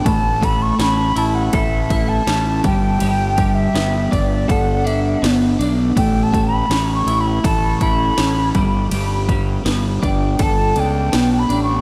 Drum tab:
RD |xxxxxxxx|xxxxxxxx|xxxxxxxx|xxxxxxxx|
SD |--o---o-|--o---o-|--o---o-|--o---o-|
BD |oo--oo-o|-o-oo---|oo--oo-o|-o-oo---|